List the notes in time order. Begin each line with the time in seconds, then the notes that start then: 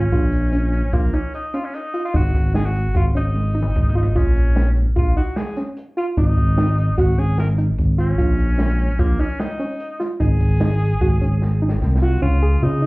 Already playing: C#4
0.12 A#1 F4, kick, closed hi-hat
0.32 closed hi-hat
0.52 C#4, closed hi-hat
0.73 closed hi-hat
0.93 A#1 A#3 F4, kick, closed hi-hat
1.13 C#4 D#4, closed hi-hat
1.33 D#4, closed hi-hat
1.54 C#4 F4, closed hi-hat
1.65 C#4
1.74 D#4, closed hi-hat
1.94 F4, closed hi-hat
2.05 F4
2.14 G#1 D#4 F#4, kick, closed hi-hat
2.35 G#1, kick, snare, closed hi-hat
2.54 D#4 G#4, snare, closed hi-hat
2.65 F#4
2.75 closed hi-hat
2.95 G#1 F4 F#4, kick, closed hi-hat
3.15 G#1 C#4 D#4, closed hi-hat
3.36 high tom
3.55 D#4
3.62 mid tom
3.76 G#1, kick, mid tom
3.89 floor tom
3.95 D#4 F4
4.03 floor tom
4.15 A#1 C#4 F4, kick, closed hi-hat
4.36 closed hi-hat
4.56 C#4, snare, closed hi-hat
4.76 closed hi-hat
4.96 A#1 F4, kick, closed hi-hat
5.16 D#4 F#4, closed hi-hat
5.36 G#4, snare, closed hi-hat
5.56 C#4, snare, closed hi-hat
5.77 closed hi-hat
5.97 F4, closed hi-hat
6.17 G#1 D#4, kick, closed hi-hat
6.37 G#1, kick, closed hi-hat
6.58 D#4, snare, closed hi-hat
6.78 closed hi-hat
6.98 G#1 F#4, kick, snare, closed hi-hat
7.18 G#1 C#4 G#4, closed hi-hat
7.38 A#4, snare, closed hi-hat
7.58 D#4, closed hi-hat
7.78 G#1, kick, closed hi-hat
7.98 C#4 F4, closed hi-hat
8.18 A#1 F4, kick, closed hi-hat
8.39 closed hi-hat
8.58 C#4, snare, closed hi-hat
8.79 closed hi-hat
8.99 A#1 A#3 F4, kick, closed hi-hat
9.19 C#4 D#4, closed hi-hat
9.40 D#4, snare, closed hi-hat
9.59 C#4, closed hi-hat
9.80 closed hi-hat
10.00 F4, snare, closed hi-hat
10.20 G#1 D#4 G#4, kick, closed hi-hat
10.40 G#1, kick, closed hi-hat
10.60 D#4, snare, closed hi-hat
10.81 closed hi-hat
11.01 G#1 F#4, kick, closed hi-hat
11.21 G#1 C#4, closed hi-hat
11.42 snare
11.62 D#4
11.69 snare
11.82 C2, kick, snare
11.96 snare
12.02 F4 F#4
12.22 C#2 C#4 F4
12.42 G#4
12.63 C#3 D#4 F4
12.82 D#4